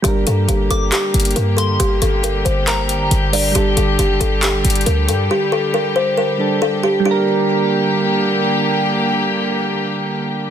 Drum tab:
HH |x---x---x---x---x---xxxxx---x---|x---x---x---x---x---x---x---o---|x---x---x---x---x---xxxxx---x---|--------------------------------|
CP |----------------x---------------|----------------x---------------|----------------x---------------|--------------------------------|

HH |--------------------------------|--------------------------------|
CP |--------------------------------|--------------------------------|